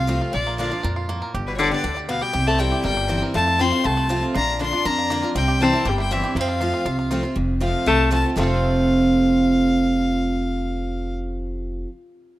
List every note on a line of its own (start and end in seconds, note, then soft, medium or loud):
0.00 0.19 C2 medium
0.00 0.31 C3 medium
0.00 0.21 F3 medium
0.00 0.21 F5 loud
0.07 0.32 F3 medium
0.07 0.32 A3 medium
0.07 0.32 C4 medium
0.07 0.32 F4 loud
0.07 0.20 F4 medium
0.22 0.33 F4 medium
0.33 0.70 A#1 medium
0.33 0.81 A#2 medium
0.33 0.58 F3 medium
0.33 0.69 F4 medium
0.33 0.57 D5 medium
0.47 0.81 A#3 medium
0.58 0.71 D3 medium
0.58 0.83 F3 medium
0.58 0.71 A#3 medium
0.58 0.94 D4 medium
0.58 0.71 D4 medium
0.58 0.70 F4 medium
0.58 0.82 D5 medium
0.71 0.84 D4 soft
0.71 0.95 F4 medium
0.71 0.83 F4 medium
0.83 1.20 F2 medium
0.83 1.08 A#2 medium
0.83 1.19 A#4 medium
0.96 1.31 F4 medium
1.09 1.33 A2 medium
1.09 1.34 A#3 medium
1.22 1.34 A#4 medium
1.34 1.70 G1 medium
1.34 1.82 G2 medium
1.34 1.69 G4 medium
1.47 1.59 B2 medium
1.47 1.55 B4 medium
1.56 1.71 D3 medium
1.56 1.70 D3 medium
1.56 1.59 E3 medium
1.56 1.71 G3 medium
1.56 1.71 B3 medium
1.56 1.94 D4 medium
1.56 1.70 G4 medium
1.56 1.60 C#5 medium
1.56 1.71 D5 medium
1.71 1.95 D3 medium
1.71 1.84 B3 medium
1.71 1.82 G4 medium
1.71 1.83 G4 medium
1.71 1.96 D5 medium
1.84 2.20 D2 medium
1.84 2.08 A2 medium
1.84 1.95 G4 medium
1.97 2.20 G4 medium
2.09 2.33 B2 medium
2.09 2.22 B3 medium
2.09 2.34 B3 medium
2.09 2.23 F5 loud
2.21 2.47 G3 medium
2.21 2.32 G4 medium
2.21 2.48 G5 loud
2.33 2.71 C2 medium
2.33 2.82 C3 medium
2.33 2.69 G4 medium
2.47 2.60 A3 medium
2.47 2.82 C4 medium
2.47 2.60 A5 medium
2.59 2.71 E3 medium
2.59 2.71 G3 medium
2.59 2.84 G3 medium
2.59 2.72 C4 medium
2.59 2.94 E4 medium
2.59 2.71 E4 medium
2.59 2.83 G5 loud
2.72 2.85 C4 medium
2.72 2.84 E4 medium
2.72 2.96 G4 medium
2.84 3.21 G1 medium
2.84 3.32 G2 medium
2.84 3.20 G3 medium
2.84 3.20 A#4 medium
2.84 3.19 G5 loud
2.97 3.32 G4 medium
3.08 3.33 E3 medium
3.08 3.33 G3 medium
3.08 3.33 C4 medium
3.08 3.35 C4 medium
3.08 3.34 E4 medium
3.22 3.35 A#4 medium
3.34 3.82 F2 medium
3.34 3.71 F2 medium
3.34 3.61 A3 medium
3.34 3.46 F4 medium
3.34 3.62 A5 loud
3.48 3.71 F4 medium
3.59 3.72 F3 medium
3.59 3.72 A3 medium
3.59 3.95 C4 medium
3.59 3.72 C4 medium
3.59 3.86 C4 medium
3.59 3.70 F4 medium
3.59 3.87 C6 loud
3.71 3.85 C4 soft
3.71 3.84 F4 medium
3.71 3.83 F4 medium
3.84 4.21 C2 medium
3.84 4.32 C3 medium
3.84 4.23 A3 medium
3.84 4.09 F4 medium
3.84 4.23 A5 loud
3.97 4.32 C4 medium
4.09 4.33 F3 medium
4.09 4.33 A3 medium
4.09 4.34 C4 loud
4.09 4.22 F4 medium
4.09 4.34 F4 loud
4.23 4.33 F4 medium
4.34 4.72 A#1 medium
4.34 4.83 A#2 medium
4.34 4.59 D4 medium
4.34 4.70 F4 medium
4.34 4.59 A#5 loud
4.59 4.72 D3 medium
4.59 4.72 A#3 medium
4.59 4.95 D4 medium
4.59 4.73 D4 medium
4.59 4.84 D4 medium
4.59 4.71 F4 medium
4.59 4.87 C6 loud
4.73 4.85 D4 medium
4.73 4.85 F4 medium
4.73 4.97 F4 medium
4.85 5.33 F2 medium
4.85 5.22 F2 medium
4.85 5.24 D4 medium
4.85 5.20 A#4 medium
4.85 5.23 A#5 loud
4.98 5.33 F4 medium
5.10 5.22 D3 medium
5.10 5.35 A#3 medium
5.10 5.23 A#3 medium
5.10 5.23 D4 loud
5.10 5.22 F4 loud
5.22 5.36 D4 soft
5.22 5.35 F4 medium
5.22 5.35 A#4 medium
5.35 5.72 C2 medium
5.35 5.83 C3 loud
5.35 5.63 G3 medium
5.35 5.60 C4 medium
5.35 5.63 G5 loud
5.48 5.83 G4 medium
5.60 5.73 E3 medium
5.60 5.73 G3 medium
5.60 6.11 C4 medium
5.60 5.73 C4 medium
5.60 5.89 C4 medium
5.60 5.72 E4 medium
5.60 5.88 A5 loud
5.73 5.86 C4 soft
5.73 5.85 E4 medium
5.73 6.08 A#4 medium
5.85 6.22 G1 medium
5.85 6.33 G2 medium
5.85 5.99 G3 medium
5.85 6.21 G4 medium
5.85 5.99 G5 medium
5.98 6.12 G3 medium
5.98 6.33 E4 medium
5.98 6.13 G5 medium
6.11 6.23 E3 loud
6.11 6.36 E3 medium
6.11 6.23 G3 medium
6.11 6.36 C4 medium
6.11 6.24 C4 loud
6.11 6.22 E4 medium
6.11 6.36 E5 medium
6.23 6.36 C4 soft
6.23 6.35 E4 medium
6.23 6.36 G4 medium
6.35 6.72 F2 loud
6.35 6.84 F2 medium
6.35 7.20 F3 medium
6.35 6.41 A#3 medium
6.35 7.21 F5 loud
6.41 6.61 C4 medium
6.48 6.59 F4 medium
6.61 6.85 F3 medium
6.61 6.85 A3 medium
6.61 6.85 C4 medium
6.61 6.72 F4 medium
6.61 6.86 F4 medium
6.74 6.84 F4 medium
6.85 7.22 C2 medium
6.85 7.34 C3 medium
6.85 6.98 F4 medium
6.99 7.09 F4 medium
7.11 7.23 F3 medium
7.11 7.24 A3 loud
7.11 7.24 C4 medium
7.11 7.22 F4 medium
7.11 7.22 F4 loud
7.23 7.36 C4 soft
7.23 7.36 F4 medium
7.36 7.73 F1 medium
7.36 7.84 F2 medium
7.60 7.85 F3 medium
7.60 7.87 F3 medium
7.60 7.85 A3 medium
7.60 7.67 C4 medium
7.60 7.85 C4 medium
7.60 7.64 F4 medium
7.60 7.86 F4 medium
7.60 7.89 F5 medium
7.86 8.23 C2 medium
7.86 8.34 C3 medium
7.86 8.11 A3 medium
7.86 8.12 A5 loud
8.11 8.23 F3 medium
8.11 8.24 A3 medium
8.11 8.30 A3 medium
8.11 8.24 C4 loud
8.11 8.18 C4 medium
8.11 8.23 F4 loud
8.11 8.14 F4 medium
8.11 8.30 A5 medium
8.24 8.37 C4 soft
8.24 8.36 F4 medium
8.36 11.84 F1 medium
8.36 11.87 F2 medium
8.36 11.88 C3 medium
8.36 11.88 F3 medium
8.36 11.84 A3 medium
8.36 11.88 A3 medium
8.36 11.88 C4 medium
8.36 11.85 C4 medium
8.36 11.89 F4 medium
8.36 11.84 A4 medium
8.36 11.14 F5 loud
8.42 11.86 F4 medium
8.42 11.87 A4 medium